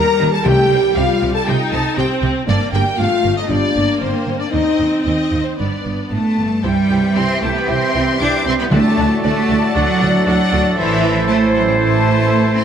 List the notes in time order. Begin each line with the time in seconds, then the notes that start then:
Already playing: G3 A#4 A#5
0.19 D#2 D#3
0.33 A4 A5
0.44 C2 C3 A3 G4 G5
0.70 C2 C3 G3
0.96 C2 C3 F4 F5
1.22 C2 C3
1.35 A4 A5
1.46 C2 C3 D#4 G4 G5
1.72 C2 C3 A4 A5
1.97 C2 C3 C4 G4 G5
2.22 C2 C3
2.47 G1 G2 A#3 D4 D5
2.73 G1 G2 G4 G5
2.97 G1 G2 A3 F4 F5
3.24 G1 G2
3.37 D#4 D#5
3.49 G1 G2 G3 D4 D5
3.75 G1 G2 A#3
4.00 G1 G2 C4 C5
4.27 G1 G2
4.39 D4 D5
4.51 D#2 C4 D#4 D#5
4.79 D#2
5.04 D#2 D#4 D#5
5.32 D#2
5.44 C4 C5
5.58 G1 G2 B3 D4 D5
5.85 G1 G2
6.11 G1 A2 A3 A5
6.38 G1 G2
6.63 C2 C3 E3 G3 E4 G4 C5 E5 G5
6.89 C2 E4 G4 C5 G5
7.16 C2 C4 E4 G4 C5 G5 C6
7.42 C2 A3 E4 G4 C5 G5 A5
7.56 B3 B5
7.67 C2 C4 E4 G4 C5 G5 C6
7.94 C2 E4 G4 C5 G5
8.20 C2 D4 E4 G4 C5 G5 D6
8.45 C2 C4 E4 G4 C5 G5 C6
8.60 B3 B5
8.71 D2 A2 D3 A3 D4 F#4 A4 D5 A5
8.98 D2 D4 F#4 A4 D5
9.23 D2 A3 D4 F#4 A4 D5 A5
9.49 D2 D4 F#4 A4 D5
9.75 D2 F#3 D4 F#4 A4 D5 F#5
10.00 D2 D4 F#4 A4 D5
10.26 D2 F#3 D4 F#4 A4 D5 F#5
10.52 D2 D4 F#4 A4 D5
10.77 A1 E3 E4 A4 C5 E5
11.28 A3 E4 C5 A5
11.54 F#3 F#5
11.67 G3 G5
11.79 A3 E4 C5 A5
12.56 C4 C6